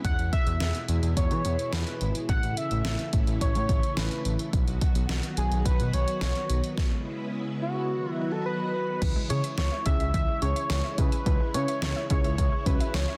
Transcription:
Already playing: string machine G#3 E4
0.04 analog synth bass E2, string machine B2 E3, analog synth lead F#5, kick, closed hi-hat
0.19 analog synth bass E2, closed hi-hat
0.33 analog synth lead E5, kick, closed hi-hat
0.47 analog synth bass E2, closed hi-hat
0.60 analog synth bass E2, snare, closed hi-hat
0.75 closed hi-hat
0.88 analog synth bass E2, closed hi-hat
1.03 analog synth bass E2, closed hi-hat
1.17 analog synth bass E2, analog synth lead C#5, kick, closed hi-hat
1.31 analog synth bass E3, closed hi-hat
1.45 analog synth bass E2, closed hi-hat
1.59 closed hi-hat
1.73 analog synth bass E2, analog synth lead B4, snare, closed hi-hat
1.87 closed hi-hat
2.01 analog synth bass G#1, closed hi-hat
2.15 closed hi-hat
2.29 analog synth bass A1, string machine C#3 A3 E4, analog synth lead F#5, kick, closed hi-hat
2.43 analog synth bass A1, closed hi-hat
2.57 analog synth lead E5, closed hi-hat
2.71 analog synth bass A1, closed hi-hat
2.85 analog synth bass A1, snare, closed hi-hat
2.99 closed hi-hat
3.13 analog synth bass A1, kick, closed hi-hat
3.27 analog synth bass A1, closed hi-hat
3.41 analog synth bass A1, analog synth lead C#5, kick, closed hi-hat
3.55 analog synth bass A2, closed hi-hat
3.69 analog synth bass A1, kick, closed hi-hat
3.83 closed hi-hat
3.97 analog synth bass A1, analog synth lead B4, snare, closed hi-hat
4.11 closed hi-hat
4.25 analog synth bass A1, closed hi-hat
4.39 closed hi-hat
4.53 analog synth bass B1, string machine D#3 F#3 B3 F#4, kick, closed hi-hat
4.67 analog synth bass B1, closed hi-hat
4.81 kick, closed hi-hat
4.95 analog synth bass B1, closed hi-hat
5.09 analog synth bass B1, snare, closed hi-hat
5.23 closed hi-hat
5.37 analog synth bass B1, analog synth lead G#4, closed hi-hat
5.51 analog synth bass B1, closed hi-hat
5.65 analog synth bass B1, analog synth lead B4, kick, closed hi-hat
5.80 analog synth bass B2, closed hi-hat
5.93 analog synth bass B1, analog synth lead C#5, closed hi-hat
6.08 closed hi-hat
6.21 analog synth bass B1, analog synth lead C#5, snare, closed hi-hat
6.36 closed hi-hat
6.50 analog synth bass B1, closed hi-hat
6.64 closed hi-hat
6.77 string machine C#3 G#3 E4, kick, snare
7.62 analog synth lead F#4
7.90 string machine D#3 F#3 F#4
8.11 analog synth lead E4
8.32 analog synth lead A4
8.46 analog synth lead B4
8.74 analog synth lead B4
9.02 analog synth bass C#2, string machine C#3 E3 G#3 E4, synth arpeggio sound E3, kick, closed hi-hat, crash
9.16 synth arpeggio sound G#3
9.30 analog synth bass C#3, synth arpeggio sound C#4, synth keys C#4 E4 G#4, analog synth lead C#5, closed hi-hat
9.44 synth arpeggio sound E5, closed hi-hat
9.58 analog synth bass C#2, analog synth lead C#5, synth arpeggio sound C#6, snare, closed hi-hat
9.72 synth arpeggio sound E5
9.86 analog synth bass C#2, synth keys C#4 E4 G#4, synth arpeggio sound E4, analog synth lead E5, kick, closed hi-hat
10.00 analog synth bass C#2, synth arpeggio sound E5, closed hi-hat
10.14 analog synth bass C#2, synth arpeggio sound E3, analog synth lead E5, kick, closed hi-hat
10.28 synth arpeggio sound G#3
10.42 analog synth bass C#2, synth arpeggio sound C#4, synth keys C#4 E4 G#4, analog synth lead C#5, closed hi-hat
10.56 synth arpeggio sound E5, closed hi-hat
10.70 analog synth bass C#2, synth arpeggio sound C#6, snare, closed hi-hat
10.84 synth arpeggio sound E5
10.98 analog synth bass C#3, synth arpeggio sound G#3, synth keys C#4 E4 G#4, analog synth lead B4, kick, closed hi-hat
11.12 synth arpeggio sound G#5, closed hi-hat
11.26 analog synth bass C#2, synth arpeggio sound E3, kick, closed hi-hat
11.40 synth arpeggio sound G#3
11.54 analog synth bass C#3, synth arpeggio sound C#4, synth keys C#4 E4 B4, analog synth lead C#5, closed hi-hat
11.68 synth arpeggio sound E5, closed hi-hat
11.82 analog synth bass C#2, synth arpeggio sound C#6, snare, closed hi-hat
11.96 synth arpeggio sound E5
12.10 analog synth bass C#2, synth keys C#4 E4 G#4, synth arpeggio sound E4, analog synth lead C#5, kick, closed hi-hat
12.24 analog synth bass C#2, synth arpeggio sound E5, closed hi-hat
12.38 analog synth bass C#2, synth arpeggio sound E3, kick, closed hi-hat
12.52 synth arpeggio sound G#3
12.66 analog synth bass C#2, synth arpeggio sound C#4, synth keys C#4 E4 F#4, analog synth lead B4, kick, closed hi-hat
12.80 synth arpeggio sound E5, closed hi-hat
12.94 analog synth bass C#2, analog synth lead C#5, synth arpeggio sound C#6, snare, closed hi-hat
13.08 synth arpeggio sound E5

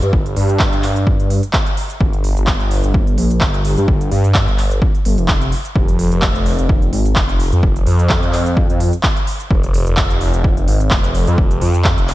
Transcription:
0.02 detuned saw bass G2, closed hi-hat
0.13 detuned saw bass G1, kick
0.26 closed hi-hat
0.36 detuned saw bass G2, open hi-hat
0.49 closed hi-hat
0.59 kick, clap
0.73 detuned saw bass G2, closed hi-hat
0.83 clap, open hi-hat
0.96 closed hi-hat
1.07 kick
1.20 detuned saw bass G2, closed hi-hat
1.30 open hi-hat
1.43 closed hi-hat
1.53 kick, clap
1.67 closed hi-hat
1.77 open hi-hat
1.90 closed hi-hat
2.01 detuned saw bass G1, kick
2.13 closed hi-hat
2.24 open hi-hat
2.37 detuned saw bass G1, closed hi-hat
2.47 kick, clap
2.60 detuned saw bass G1, closed hi-hat
2.71 open hi-hat
2.84 detuned saw bass G1, closed hi-hat
2.94 kick
3.07 closed hi-hat
3.18 detuned saw bass A#1, open hi-hat
3.31 closed hi-hat
3.41 detuned saw bass G1, kick, clap
3.54 closed hi-hat
3.65 open hi-hat
3.77 detuned saw bass G2, closed hi-hat
3.88 detuned saw bass G1, kick
4.01 closed hi-hat
4.12 detuned saw bass G2, open hi-hat
4.24 closed hi-hat
4.34 kick, clap
4.48 detuned saw bass G1, closed hi-hat
4.58 clap, open hi-hat
4.71 closed hi-hat
4.82 kick
4.95 closed hi-hat
5.05 detuned saw bass G1, open hi-hat
5.18 detuned saw bass F1, closed hi-hat
5.28 kick, clap
5.42 closed hi-hat
5.52 open hi-hat
5.65 closed hi-hat
5.76 detuned saw bass F1, kick
5.88 closed hi-hat
5.99 open hi-hat
6.12 detuned saw bass F1, closed hi-hat
6.22 kick, clap
6.35 detuned saw bass F1, closed hi-hat
6.46 open hi-hat
6.59 detuned saw bass F1, closed hi-hat
6.69 kick
6.82 closed hi-hat
6.93 detuned saw bass G#1, open hi-hat
7.06 closed hi-hat
7.16 detuned saw bass F1, kick, clap
7.29 closed hi-hat
7.40 open hi-hat
7.52 detuned saw bass F2, closed hi-hat
7.63 detuned saw bass F1, kick
7.76 closed hi-hat
7.87 detuned saw bass F2, open hi-hat
7.99 closed hi-hat
8.09 kick, clap
8.23 detuned saw bass F2, closed hi-hat
8.33 clap, open hi-hat
8.46 closed hi-hat
8.57 kick
8.70 detuned saw bass F2, closed hi-hat
8.80 open hi-hat
8.93 closed hi-hat
9.03 kick, clap
9.17 closed hi-hat
9.27 open hi-hat
9.40 closed hi-hat
9.51 detuned saw bass F1, kick
9.63 closed hi-hat
9.74 open hi-hat
9.87 detuned saw bass F1, closed hi-hat
9.97 kick, clap
10.10 detuned saw bass F1, closed hi-hat
10.21 open hi-hat
10.34 detuned saw bass F1, closed hi-hat
10.44 kick
10.57 closed hi-hat
10.68 detuned saw bass G#1, open hi-hat
10.81 closed hi-hat
10.91 detuned saw bass F1, kick, clap
11.04 closed hi-hat
11.15 open hi-hat
11.27 detuned saw bass F2, closed hi-hat
11.38 detuned saw bass F1, kick
11.51 closed hi-hat
11.61 detuned saw bass F2, open hi-hat
11.74 closed hi-hat
11.84 kick, clap
11.98 detuned saw bass F1, closed hi-hat
12.08 clap, open hi-hat

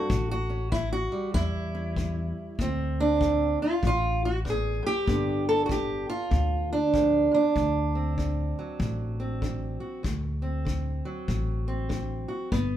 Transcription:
Already playing: steel-string acoustic guitar G2 F#4
0.10 upright bass A1, steel-string acoustic guitar A2, kick
0.31 steel-string acoustic guitar F#4
0.50 steel-string acoustic guitar C#4
0.72 steel-string acoustic guitar E3 E4, kick
0.93 steel-string acoustic guitar F#4
1.12 steel-string acoustic guitar G3
1.34 upright bass E2, steel-string acoustic guitar E2 E4, kick
1.75 steel-string acoustic guitar C#4
1.96 steel-string acoustic guitar E3, kick
2.59 upright bass D2, steel-string acoustic guitar D2 C4, kick
3.00 steel-string acoustic guitar D4
3.21 steel-string acoustic guitar D3, kick
3.62 steel-string acoustic guitar F4
3.83 upright bass A1, steel-string acoustic guitar A2, kick
3.87 steel-string acoustic guitar F4
4.25 steel-string acoustic guitar F#4
4.45 steel-string acoustic guitar E2, kick
4.50 steel-string acoustic guitar G#4
4.83 steel-string acoustic guitar F#2 G4
5.06 upright bass G1, steel-string acoustic guitar G2 D3 B3 D4, kick
5.49 steel-string acoustic guitar A4
5.66 steel-string acoustic guitar D3 F#4, kick
5.72 steel-string acoustic guitar G4
6.10 steel-string acoustic guitar F4
6.31 upright bass D2, steel-string acoustic guitar D3, kick
6.73 steel-string acoustic guitar D4
6.93 steel-string acoustic guitar F2, kick
7.31 steel-string acoustic guitar E2 D4
7.56 upright bass D2, kick
7.95 steel-string acoustic guitar C4
8.18 steel-string acoustic guitar D3, kick
8.59 steel-string acoustic guitar F#3
8.80 upright bass A1, steel-string acoustic guitar A2, kick
9.20 steel-string acoustic guitar C4
9.42 steel-string acoustic guitar D3, kick
9.80 steel-string acoustic guitar F#4
10.03 steel-string acoustic guitar D2, upright bass D2, kick
10.42 steel-string acoustic guitar C4
10.65 steel-string acoustic guitar D3, kick
11.05 steel-string acoustic guitar F#3
11.28 upright bass A1, steel-string acoustic guitar A2, kick
11.68 steel-string acoustic guitar C4
11.89 steel-string acoustic guitar D3, kick
12.28 steel-string acoustic guitar F#4
12.52 upright bass G1, steel-string acoustic guitar G2 B3, kick

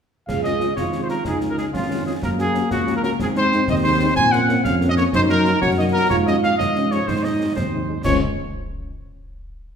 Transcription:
0.27 tuba C#2, euphonium G#4, trumpet section F5, concert bass drum, snare, crash
0.43 french horn section G#3 C#4 F4, trumpet section D#5, snare
0.60 french horn section G#3 C#4 F4, snare
0.76 tuba G#1, euphonium F4, trumpet section C#5, concert bass drum, snare
0.93 french horn section G#3 C#4 F4, snare
1.03 trumpet section C5
1.09 french horn section G#3 C#4 F4, trumpet section A#4, snare
1.25 tuba C#2, euphonium D#4, trumpet section G#4, concert bass drum, snare
1.41 french horn section G#3 C#4 F4, snare
1.50 trumpet section A#4
1.58 french horn section G#3 C#4 F4, trumpet section G#4, snare
1.73 tuba G#1, euphonium C#4, trumpet section F4, concert bass drum, snare
1.89 french horn section G#3 C#4 F4
2.06 french horn section G#3 C#4 F4, trumpet section G#4
2.21 tuba F#2, euphonium A#3, trumpet section A#4, concert bass drum, snare
2.39 french horn section A#3 C#4 F#4, trumpet section G#4, snare
2.55 french horn section A#3 C#4 F#4, snare
2.70 tuba C#2, trumpet section F#4, concert bass drum, snare
2.87 french horn section A#3 C#4 F#4, snare
2.97 trumpet section A#4
3.03 french horn section A#3 C#4 F#4, trumpet section A#4, snare
3.19 tuba G#2, euphonium C4, trumpet section G#4, concert bass drum, snare
3.35 french horn section G#3 C4 D#4, trumpet section C5, snare
3.52 french horn section G#3 C4 D#4, snare
3.67 tuba D#2, trumpet section D#5, concert bass drum, snare
3.84 french horn section G#3 C4 D#4, trumpet section C5
4.01 french horn section G#3 C4 D#4
4.16 tuba A#2, trumpet section G#5, concert bass drum, snare, crash
4.32 french horn section F3 A#3 C#4, trumpet section F#5, snare
4.48 french horn section F3 A#3 C#4, snare
4.64 tuba F2, euphonium C#4, trumpet section F5, concert bass drum, snare
4.80 french horn section F3 A#3 C#4, snare
4.89 trumpet section D#5
4.96 french horn section F3 A#3 C#4, trumpet section C#5, snare
5.13 tuba F#2, euphonium D#4, trumpet section C5, concert bass drum, snare
5.29 french horn section F#3 A#3 D#4, trumpet section A#4, snare
5.45 french horn section F#3 A#3 D#4, snare
5.61 tuba F#2, euphonium F#4, trumpet section C#5, concert bass drum, snare
5.77 french horn section F#3 A#3 D#4, trumpet section D#5
5.93 french horn section F#3 A#3 D#4, trumpet section A#4
6.10 tuba G#2, euphonium F4, trumpet section C#5, concert bass drum, snare
6.26 french horn section F3 G#3 C#4, trumpet section D#5, snare
6.43 french horn section F3 G#3 C#4, trumpet section F5, snare
6.58 tuba G#2, trumpet section D#5, concert bass drum, snare
6.75 french horn section F3 G#3 C#4, snare
6.91 french horn section F3 G#3 C#4, trumpet section C#5, snare
7.08 tuba G#2, euphonium D#4, trumpet section C5, concert bass drum, snare
7.23 french horn section F#3 G#3 D#4, trumpet section D#5
7.39 french horn section F#3 G#3 D#4
7.56 tuba D#2, euphonium C4, trumpet section C5, concert bass drum, snare
7.73 french horn section F#3 G#3 D#4
7.88 french horn section F#3 G#3 D#4
8.04 tuba C#2, french horn section F3 G#3 C#4, trumpet section C#5, concert bass drum, snare, crash

